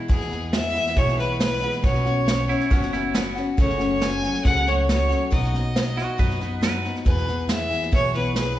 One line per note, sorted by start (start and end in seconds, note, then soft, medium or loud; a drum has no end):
0.08 0.31 E2 medium
0.08 0.77 E2 medium
0.08 0.31 B2 medium
0.08 0.31 E3 medium
0.08 0.30 G#3 medium
0.08 0.29 B3 medium
0.08 0.28 E4 loud
0.08 0.51 G#4 medium
0.08 kick loud
0.08 snare soft
0.21 snare soft
0.30 0.51 E3 soft
0.30 0.52 G#3 medium
0.30 0.53 B3 medium
0.30 0.52 E4 medium
0.30 snare soft
0.52 0.74 E3 medium
0.52 0.75 G#3 medium
0.52 0.73 B3 medium
0.52 0.72 E4 medium
0.52 0.99 E5 loud
0.52 snare loud
0.52 hi-hat pedal medium
0.74 0.95 E3 soft
0.74 0.96 G#3 soft
0.74 0.96 B3 soft
0.74 0.96 E4 soft
0.74 snare soft
0.86 snare soft
0.95 1.64 B1 medium
0.95 1.18 E2 medium
0.95 1.18 B2 medium
0.95 1.18 E3 medium
0.95 1.19 G#3 medium
0.95 1.17 B3 medium
0.95 1.16 E4 medium
0.95 1.19 C#5 loud
0.95 kick loud
0.95 snare soft
1.08 snare soft
1.17 1.38 E3 soft
1.17 1.39 G#3 medium
1.17 1.40 B3 medium
1.17 1.40 E4 medium
1.17 1.39 B4 medium
1.17 snare soft
1.40 1.62 E3 medium
1.40 1.62 G#3 medium
1.40 1.61 B3 medium
1.40 1.60 E4 medium
1.40 1.81 B4 loud
1.40 snare loud
1.40 hi-hat pedal loud
1.61 1.83 E3 soft
1.61 1.84 G#3 soft
1.61 1.83 B3 soft
1.61 1.83 E4 medium
1.61 snare soft
1.73 snare soft
1.82 2.51 B1 loud
1.82 2.05 B2 medium
1.82 2.05 F#3 medium
1.82 2.06 B3 medium
1.82 2.05 C#4 medium
1.82 2.03 F#4 medium
1.82 3.10 C#5 medium
1.82 kick loud
1.82 snare soft
1.94 snare soft
2.05 2.27 B3 soft
2.05 2.28 C#4 medium
2.05 2.27 F#4 medium
2.05 snare soft
2.27 2.49 F#3 medium
2.27 2.49 B3 medium
2.27 2.49 C#4 medium
2.27 2.47 F#4 medium
2.27 snare loud
2.27 hi-hat pedal medium
2.49 2.71 B3 soft
2.49 2.71 C#4 medium
2.49 2.70 E4 medium
2.49 2.71 F#4 soft
2.49 snare soft
2.60 snare soft
2.70 3.39 F#1 medium
2.70 2.92 B2 medium
2.70 2.93 F#3 loud
2.70 2.93 B3 medium
2.70 2.92 C#4 medium
2.70 2.93 C#4 medium
2.70 2.91 F#4 medium
2.70 kick loud
2.70 snare soft
2.82 snare soft
2.93 3.14 B3 medium
2.93 3.14 C#4 medium
2.93 3.14 E4 medium
2.93 3.14 F#4 medium
2.93 snare soft
3.14 3.36 F#3 medium
3.14 3.46 B3 medium
3.14 3.36 B3 medium
3.14 3.36 C#4 medium
3.14 3.34 F#4 medium
3.14 snare loud
3.14 hi-hat pedal medium
3.35 3.58 B3 soft
3.35 3.58 C#4 medium
3.35 3.57 F#4 medium
3.35 snare soft
3.57 4.25 F#1 medium
3.57 3.79 F#2 medium
3.57 3.80 C#3 medium
3.57 3.80 F#3 medium
3.57 3.79 A3 medium
3.57 3.78 C#4 loud
3.57 3.77 F#4 medium
3.57 4.04 C#5 loud
3.57 kick loud
3.57 snare soft
3.69 snare soft
3.78 3.99 F#3 soft
3.78 4.00 A3 soft
3.78 4.01 C#4 medium
3.78 4.01 F#4 medium
3.78 snare soft
4.00 4.22 F#3 medium
4.00 4.23 A3 medium
4.00 4.23 C#4 medium
4.00 4.21 F#4 medium
4.00 4.44 G#5 loud
4.00 snare loud
4.00 hi-hat pedal medium
4.22 4.44 F#3 soft
4.22 4.45 A3 soft
4.22 4.45 C#4 soft
4.22 4.44 F#4 medium
4.22 snare soft
4.34 snare soft
4.44 5.13 C#2 medium
4.44 4.66 F#2 medium
4.44 4.67 C#3 medium
4.44 4.67 F#3 medium
4.44 4.67 A3 medium
4.44 4.66 C#4 medium
4.44 4.65 F#4 medium
4.44 4.69 F#5 loud
4.44 kick loud
4.44 snare soft
4.56 snare soft
4.66 4.86 F#3 medium
4.66 4.88 A3 medium
4.66 4.89 C#4 medium
4.66 4.88 F#4 medium
4.66 4.89 C#5 medium
4.66 snare soft
4.88 5.10 F#3 medium
4.88 5.10 A3 medium
4.88 5.09 C#4 medium
4.88 5.08 F#4 medium
4.88 5.30 C#5 loud
4.88 snare loud
4.88 hi-hat pedal medium
5.09 5.30 F#3 soft
5.09 5.31 A3 medium
5.09 5.32 C#4 medium
5.09 5.31 F#4 medium
5.09 snare soft
5.30 6.00 B1 medium
5.30 5.53 B2 medium
5.30 5.53 F#3 medium
5.30 5.53 B3 medium
5.30 5.53 D#4 medium
5.30 5.51 F#4 medium
5.30 6.59 D#5 medium
5.30 kick loud
5.30 snare soft
5.44 snare soft
5.52 5.74 B3 soft
5.52 5.75 D#4 medium
5.52 5.75 F#4 medium
5.52 snare soft
5.74 5.96 F#3 medium
5.74 5.97 B3 medium
5.74 5.97 D#4 medium
5.74 5.95 F#4 medium
5.74 snare loud
5.74 hi-hat pedal medium
5.96 6.18 B3 soft
5.96 6.18 D#4 soft
5.96 6.18 F#4 medium
5.96 snare soft
6.18 6.87 F#2 medium
6.18 6.40 B2 medium
6.18 6.41 F#3 medium
6.18 6.41 B3 medium
6.18 6.40 D#4 medium
6.18 6.39 F#4 loud
6.18 6.61 B4 medium
6.18 kick loud
6.18 snare soft
6.30 snare soft
6.40 6.61 B3 medium
6.40 6.62 D#4 medium
6.40 6.62 F#4 medium
6.40 snare soft
6.61 6.84 F#3 medium
6.61 6.84 B3 medium
6.61 6.84 D#4 medium
6.61 6.82 F#4 medium
6.61 6.95 B4 medium
6.61 snare loud
6.61 hi-hat pedal medium
6.83 7.05 B3 soft
6.83 7.06 D#4 medium
6.83 7.05 F#4 medium
6.83 snare soft
6.95 snare soft
7.05 7.27 E2 medium
7.05 7.73 E2 medium
7.05 7.28 B2 medium
7.05 7.28 E3 medium
7.05 7.28 B3 medium
7.05 7.27 E4 medium
7.05 7.26 G#4 medium
7.05 7.47 B4 medium
7.05 kick loud
7.05 snare soft
7.17 snare soft
7.27 7.46 E3 soft
7.27 7.48 B3 soft
7.27 7.49 E4 medium
7.27 7.49 G#4 medium
7.27 snare soft
7.48 7.70 E3 medium
7.48 7.71 B3 medium
7.48 7.70 E4 medium
7.48 7.69 G#4 medium
7.48 7.91 E5 loud
7.48 snare loud
7.48 hi-hat pedal medium
7.70 7.91 E3 soft
7.70 7.92 B3 soft
7.70 7.92 E4 soft
7.70 7.92 G#4 soft
7.70 snare soft
7.82 snare soft
7.92 8.59 B1 medium
7.92 8.14 E2 medium
7.92 8.14 B2 medium
7.92 8.15 E3 medium
7.92 8.14 B3 medium
7.92 8.13 E4 medium
7.92 8.12 G#4 medium
7.92 8.14 C#5 loud
7.92 kick loud
7.92 snare soft
8.03 snare soft
8.13 8.33 E3 medium
8.13 8.35 B3 soft
8.13 8.36 E4 medium
8.13 8.36 G#4 medium
8.13 8.35 B4 medium
8.13 snare soft
8.34 8.57 E3 medium
8.34 8.58 B3 medium
8.34 8.57 E4 medium
8.34 8.56 G#4 medium
8.34 8.59 B4 medium
8.34 snare loud
8.34 hi-hat pedal loud